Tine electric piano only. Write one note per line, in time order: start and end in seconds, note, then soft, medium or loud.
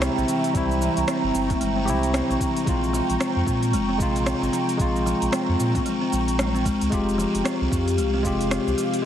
0.00 0.53 G3 medium
0.00 0.55 C4 medium
0.00 0.57 E4 loud
0.00 0.51 G4 medium
0.53 1.84 G3 medium
0.53 1.85 C4 medium
0.57 1.86 E4 medium
1.86 2.64 C4 medium
1.86 2.66 E4 loud
1.86 2.64 G4 medium
2.65 3.96 G#3 medium
2.69 3.98 F4 loud
3.98 4.76 G#3 medium
4.02 4.78 F4 medium
4.78 6.09 G#3 medium
4.78 6.11 F4 medium
6.90 8.21 G#3 medium
6.90 8.22 F4 medium
6.94 8.23 G4 loud
8.23 9.01 G#3 medium
8.23 9.02 F4 medium
8.27 9.03 G4 loud
9.02 9.05 G#3 medium